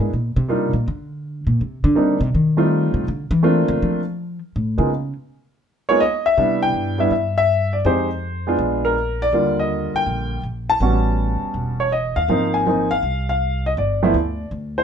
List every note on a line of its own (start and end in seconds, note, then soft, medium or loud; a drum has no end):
0.00 0.11 G#2 medium
0.13 0.36 A#2 medium
0.36 0.70 C3 medium
0.48 0.70 G3 medium
0.48 0.70 A#3 medium
0.48 0.70 D4 soft
0.48 0.70 D#4 medium
0.48 0.71 F4 medium
0.73 0.85 A#2 medium
0.88 1.43 D3 medium
1.47 1.58 A#2 medium
1.61 1.83 C3 medium
1.84 2.18 D3 loud
1.95 2.17 G3 medium
1.95 2.17 A#3 soft
1.95 2.18 C4 medium
1.95 2.18 D4 medium
1.95 2.18 D#4 medium
2.21 2.32 C3 loud
2.35 2.90 D#3 medium
2.57 3.04 G3 medium
2.57 3.04 A3 medium
2.57 3.04 C4 medium
2.57 3.04 D#4 medium
2.57 3.04 F4 medium
2.94 3.06 C3 medium
3.08 3.30 D3 medium
3.31 3.65 E3 loud
3.43 3.99 A3 medium
3.43 3.99 A#3 medium
3.43 4.00 C4 medium
3.43 3.99 D4 medium
3.43 4.00 F4 medium
3.68 3.80 D3 loud
3.82 4.38 F3 medium
4.56 4.78 A2 medium
4.78 5.12 C#3 medium
4.78 4.89 G#3 medium
4.78 4.89 A#3 soft
4.78 4.89 B3 soft
4.78 4.89 D#4 soft
4.78 4.89 F4 medium
5.89 6.00 G#3 medium
5.89 6.00 A#3 medium
5.89 6.00 B3 medium
5.89 6.00 D#4 medium
5.89 6.01 F4 medium
5.89 6.01 C#5 medium
6.00 6.25 D#5 medium
6.26 6.60 E5 loud
6.37 6.72 C3 medium
6.37 6.94 G3 medium
6.37 6.94 B3 medium
6.37 6.94 D4 medium
6.37 6.94 E4 medium
6.63 7.00 G5 medium
6.74 7.08 G2 medium
6.98 7.10 G3 medium
6.98 7.10 B3 medium
6.98 7.10 D4 medium
6.98 7.10 E4 medium
6.98 7.11 E5 medium
7.10 7.81 G2 medium
7.10 7.36 E5 medium
7.38 7.74 E5 loud
7.73 7.86 D5 medium
7.85 8.55 F2 medium
7.85 8.07 G#3 medium
7.85 8.07 C4 medium
7.85 8.07 D#4 medium
7.85 8.07 G4 medium
7.85 8.55 C5 medium
8.47 8.93 G#3 medium
8.47 8.94 B3 medium
8.47 8.94 D4 medium
8.47 8.94 F4 medium
8.59 9.29 A#1 medium
8.85 9.22 A#4 medium
9.22 9.56 D5 loud
9.32 9.90 D#2 medium
9.32 10.37 D3 medium
9.32 10.36 G3 medium
9.32 10.36 A#3 medium
9.32 10.37 F4 medium
9.59 9.93 D#5 medium
9.94 10.41 G5 medium
9.94 muted upright bass stroke soft
10.06 10.41 A#1 medium
10.43 10.78 A#1 medium
10.70 11.83 A5 loud
10.80 11.38 A1 medium
10.80 11.85 G3 medium
10.80 11.85 B3 medium
10.80 11.85 C#4 medium
10.80 11.85 F#4 medium
11.42 muted upright bass stroke soft
11.54 12.12 E1 medium
11.80 11.91 C#5 medium
11.92 12.17 D#5 medium
12.16 12.28 D#2 medium
12.16 12.54 F5 loud
12.28 12.99 G#1 medium
12.28 12.65 F3 medium
12.28 12.65 A#3 medium
12.28 12.66 C4 medium
12.28 12.66 D#4 medium
12.54 12.92 G#5 medium
12.67 12.88 F3 medium
12.67 12.89 A#3 medium
12.67 12.89 C4 soft
12.67 12.89 D#4 medium
12.91 13.25 F5 loud
13.03 13.74 C2 medium
13.29 13.63 F5 medium
13.66 13.71 D#5 medium
13.77 14.12 G1 medium
13.77 14.48 D5 medium
14.03 14.14 F3 medium
14.03 14.14 A3 medium
14.03 14.14 B3 medium
14.03 14.15 E4 medium
14.14 14.49 D2 medium
14.51 14.84 D2 medium
14.78 14.84 C5 medium